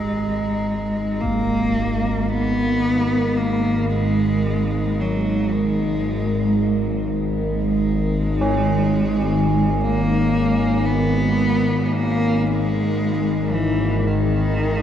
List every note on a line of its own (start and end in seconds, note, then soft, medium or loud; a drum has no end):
0.00 14.82 G#1 medium
0.00 1.22 G#3 medium
0.00 14.82 G#3 medium
0.00 5.50 D#4 medium
0.00 14.82 D#4 medium
0.00 14.82 A#4 medium
1.21 2.30 A#3 medium
1.21 impact medium
2.29 3.38 B3 medium
3.36 3.88 A#3 medium
3.89 5.02 G#3 loud
5.00 5.52 F#3 medium
5.51 7.11 G#3 medium
7.63 9.82 G#3 medium
8.41 14.82 C#4 medium
9.80 10.87 A#3 loud
10.85 11.85 B3 loud
11.85 11.94 B3 medium
11.92 12.49 A#3 loud
12.47 13.54 G#3 loud
13.53 14.08 E3 medium
14.06 14.82 D#3 medium